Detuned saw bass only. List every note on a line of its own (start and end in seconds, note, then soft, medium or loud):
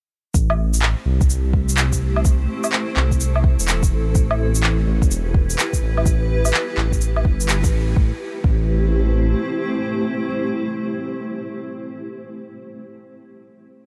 0.34 0.95 A1 medium
1.06 2.48 C2 medium
2.96 3.57 C2 medium
3.59 3.93 E1 medium
3.92 4.86 A1 medium
4.86 5.09 A1 medium
5.10 5.57 E1 loud
5.82 6.52 A1 medium
6.77 7.24 A1 loud
7.25 7.65 G1 medium
7.64 7.72 A1 loud
7.72 7.95 A1 medium
7.96 8.12 A1 loud
8.44 9.35 A1 loud